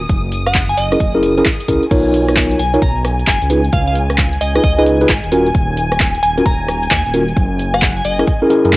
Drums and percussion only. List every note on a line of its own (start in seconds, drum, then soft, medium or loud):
0.09 kick loud
0.09 closed hi-hat medium
0.32 open hi-hat loud
0.46 cross-stick medium
0.46 closed hi-hat medium
0.54 kick loud
0.54 clap loud
0.69 closed hi-hat soft
0.77 open hi-hat loud
0.92 cross-stick medium
0.92 closed hi-hat medium
1.00 kick loud
1.00 closed hi-hat medium
1.23 open hi-hat loud
1.37 closed hi-hat medium
1.46 kick loud
1.46 clap loud
1.60 closed hi-hat medium
1.68 kick medium
1.68 open hi-hat loud
1.83 closed hi-hat soft
1.91 kick loud
1.91 closed hi-hat medium
1.91 crash loud
2.14 open hi-hat loud
2.28 cross-stick medium
2.28 closed hi-hat medium
2.37 kick loud
2.37 clap loud
2.51 closed hi-hat soft
2.59 open hi-hat loud
2.74 closed hi-hat medium
2.82 kick loud
2.82 closed hi-hat medium
3.05 cross-stick medium
3.05 open hi-hat loud
3.19 closed hi-hat medium
3.27 kick loud
3.27 clap loud
3.42 closed hi-hat medium
3.50 open hi-hat loud
3.65 closed hi-hat soft
3.73 kick loud
3.73 closed hi-hat medium
3.95 open hi-hat loud
4.10 cross-stick medium
4.10 closed hi-hat medium
4.18 kick loud
4.18 clap loud
4.33 closed hi-hat soft
4.41 open hi-hat loud
4.56 cross-stick medium
4.56 closed hi-hat medium
4.64 kick loud
4.64 closed hi-hat medium
4.86 open hi-hat loud
5.01 closed hi-hat medium
5.09 kick loud
5.09 clap loud
5.24 closed hi-hat medium
5.32 open hi-hat loud
5.46 closed hi-hat soft
5.55 kick loud
5.55 closed hi-hat medium
5.77 open hi-hat loud
5.92 cross-stick medium
5.92 closed hi-hat medium
6.00 kick loud
6.00 clap loud
6.15 closed hi-hat soft
6.23 open hi-hat loud
6.38 closed hi-hat medium
6.46 kick loud
6.46 closed hi-hat medium
6.68 cross-stick medium
6.68 open hi-hat loud
6.83 closed hi-hat soft
6.91 kick loud
6.91 clap loud
7.06 closed hi-hat medium
7.14 open hi-hat loud
7.28 closed hi-hat soft
7.37 kick loud
7.37 closed hi-hat medium
7.59 open hi-hat loud
7.74 cross-stick medium
7.74 closed hi-hat medium
7.82 kick loud
7.82 clap loud
7.97 closed hi-hat soft
8.05 open hi-hat loud
8.19 cross-stick medium
8.19 closed hi-hat medium
8.27 kick loud
8.27 closed hi-hat medium
8.50 open hi-hat loud
8.65 closed hi-hat medium
8.73 kick loud
8.73 clap loud